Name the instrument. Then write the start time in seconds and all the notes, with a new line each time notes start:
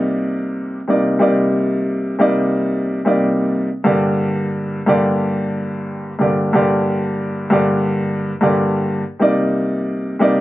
upright piano
Already playing: C3 G3 A#3 D#4 D5
0.88 C3 G3 A#3 D#4 D5
1.19 C3 G3 A#3 D#4 D5
2.19 C3 G3 A#3 D#4 D5
3.05 C3 G3 A#3 D#4 D5
3.84 G2 D3 A#3 G4 D5
4.87 G2 D3 A#3 G4 D5
6.19 G2 D3 A#3 G4 D5
6.53 G2 D3 A#3 G4 D5
7.50 G2 D3 A#3 G4 D5
8.41 G2 D3 A#3 G4 D5
9.20 C3 G3 A#3 D#4 D5
10.20 C3 G3 A#3 D#4 D5